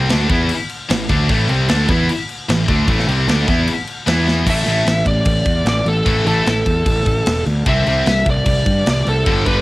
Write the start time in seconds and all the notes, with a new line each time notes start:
Already playing: C4
0.09 D2 D3 A3 D4, snare, crash
0.29 E2 E3 B3 E4, kick, crash
0.49 crash
0.69 crash
0.89 A1 A2 E3, snare, crash
1.09 D2 D3 A3 D4, kick, crash
1.28 A1 A2 E3 A3, kick, crash
1.49 C2 C3 G3 C4, crash
1.68 D2 D3 A3 D4, snare, crash
1.89 E2 E3 B3 E4, kick, crash
2.09 crash
2.29 crash
2.49 A1 A2 E3, snare, crash
2.68 D2 D3 A3 D4, kick, crash
2.88 A1 A2 E3 A3, kick, crash
2.99 snare
3.07 C2 C3 G3 C4, crash
3.27 D2 D3 A3 D4, snare, crash
3.46 E2 E3 B3 E4, kick, crash
3.67 crash
3.87 crash
4.07 E2 E3 B3 E4, snare, crash
4.28 snare
4.46 A1 A2 E3 A3 E5, kick, crash
4.66 A1 A2 E3 A3, crash
4.86 A1, snare, crash
5.06 A1 D5, kick, crash
5.25 A1, kick, crash
5.46 E2, kick, crash
5.65 A1 D5, snare, crash
5.85 A1 A4, crash
6.06 A1 A2 E3 A3, kick, crash
6.25 A1 A2 E3 A3 A4, crash
6.46 A1, snare, crash
6.66 E2, kick, crash
6.86 A1, kick, crash
7.06 A1, kick, crash
7.26 E1, snare, crash
7.46 D2, crash
7.66 C2 C3 G3 C4 E5, kick, crash
7.86 C2 C3 G3 C4, crash
8.06 C2, snare, crash
8.26 C2, kick, crash
8.30 D5
8.45 C2, kick, crash
8.66 G2, kick, crash
8.86 C2 D5, snare, crash
9.06 C2 A4, crash
9.26 G1 G2 D3 G3, kick, crash
9.46 G1 G2 D3 G3 B4, kick, crash